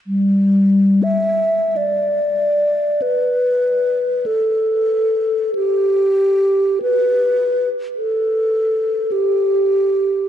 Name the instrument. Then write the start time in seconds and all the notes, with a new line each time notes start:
alto flute
0.07 G3
1.03 E5
1.77 D5
3.02 B4
4.26 A4
5.55 G4
6.82 B4
7.96 A4
9.12 G4